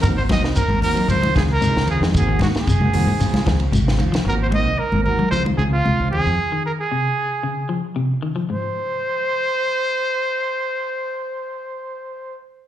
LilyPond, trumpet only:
\new Staff \with { instrumentName = "Trumpet" } { \time 4/4 \key des \major \tempo 4 = 113 bes'16 c''16 ees''8 bes'8 bes'8 c''8 aes'16 bes'8. aes'8 | aes'8 ges'16 aes'2 r4 r16 | bes'16 c''16 ees''8 bes'8 bes'8 c''8 aes'16 f'8. aes'8~ | aes'8 bes'16 aes'2 r4 r16 |
c''1~ | c''1 | }